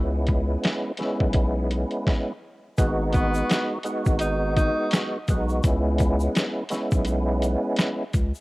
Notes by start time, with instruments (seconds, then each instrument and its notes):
Already playing: sub bass C#2, tonewheel organ G#3 B3 C#4 E4
0.27 kick, closed hi-hat
0.64 snare, closed hi-hat
0.97 tonewheel organ G#3 B3 C#4 E4, snare, closed hi-hat
1.20 sub bass B1, kick
1.33 kick, closed hi-hat
1.71 closed hi-hat
1.91 closed hi-hat
2.07 kick, snare
2.78 sub bass G#1, tonewheel organ G#3 B3 D#4 F#4, kick, closed hi-hat, shaker
3.13 tenor saxophone B3, kick, closed hi-hat, shaker
3.34 shaker
3.49 snare, closed hi-hat, shaker
3.83 tonewheel organ G#3 B3 D#4 F#4, closed hi-hat, shaker
4.06 sub bass G#1, kick, shaker
4.19 tenor saxophone D#4, closed hi-hat, shaker
4.56 tenor saxophone D#4, kick, closed hi-hat, shaker
4.91 snare, closed hi-hat, shaker
5.28 sub bass B1, tonewheel organ G#3 B3 D#4 F#4, kick, closed hi-hat, shaker
5.49 shaker
5.63 sub bass C#2, tonewheel organ G#3 B3 C#4 E4, kick, closed hi-hat, shaker
5.98 kick, closed hi-hat, shaker
6.20 shaker
6.35 snare, closed hi-hat, shaker
6.69 tonewheel organ G#3 B3 C#4 E4, snare, closed hi-hat, shaker
6.91 sub bass B1, kick, shaker
7.05 closed hi-hat, shaker
7.42 closed hi-hat, shaker
7.77 snare, closed hi-hat, shaker
8.14 sub bass C#2, kick, closed hi-hat, shaker
8.35 shaker